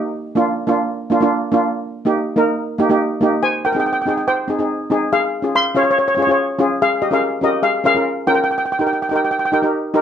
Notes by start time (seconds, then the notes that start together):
0.35 A#3 D4 F4
0.67 A#3 D4 F4
1.10 A#3 D4 F4
1.21 A#3 D4 F4
1.52 A#3 D4 F4
2.05 A#3 D#4 G4
2.36 A#3 D#4 A#4
2.78 A#3 D#4 G4
2.89 A#3 D#4 G4
3.21 A#3 D#4 G4
3.43 C5 G#5
3.65 A#4 G5
3.72 C4 D#4 G#4 G5
3.80 G5
3.86 G5
3.93 G5
4.02 G5
4.06 C4 D#4 G#4 G5
4.17 G5
4.28 C5 G5
4.48 C4 D#4 G#4
4.59 C4 D#4 G#4
4.90 C4 D#4 G#4
5.13 G#4 F5
5.42 C#4 F4 G#4
5.55 F5 C6
5.75 C#4 F4 G#4 C#5 F5
5.83 C#5
5.91 C#5
5.99 C#5
6.08 C#5
6.15 C#4 F4 C#5
6.19 G#4 C#5
6.27 C#4 F4 G#4
6.31 C#5
6.59 C#4 F4 G#4
6.82 G#4 F5
7.02 G4 D#5
7.11 C#4 F4 G#4 A#4 F5
7.41 C#4 F4 G4 A#4 D#5
7.63 G#4 F5
7.84 C#4 F4 G#4 A#4 F5
7.95 C#4 F4 A#4
8.27 C#4 F4 A#4 G5
8.35 G5
8.44 G5
8.51 G5
8.58 G5
8.66 G5
8.72 G5
8.79 D#4 G4 A#4 G5
8.87 G5
8.93 G5
9.02 G5
9.09 D#4 G4 A#4 G5
9.16 G5
9.25 G5
9.31 G5
9.39 G5
9.45 G5
9.52 D#4 G4 A#4 G5
9.62 D#4 G4 A#4
9.94 D#4 G4 A#4